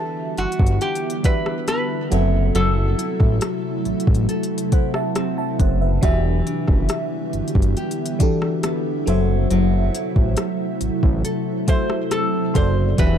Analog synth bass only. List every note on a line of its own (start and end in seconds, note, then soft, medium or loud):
0.38 0.47 G1 soft
0.60 0.79 G1 medium
2.12 2.51 F#1 loud
2.55 2.95 F#1 loud
3.20 3.40 A1 medium
3.86 3.94 A1 soft
4.08 4.27 A1 medium
5.60 5.99 F#1 medium
6.03 6.42 E1 loud
6.68 6.88 F#1 medium
7.34 7.42 G1 soft
7.55 7.75 G1 loud
9.08 9.47 F#1 loud
9.51 9.90 F#1 loud
10.16 10.36 A1 medium
10.81 10.90 A1 soft
11.03 11.23 A1 loud
12.55 12.95 F#1 loud
12.99 13.18 E1 loud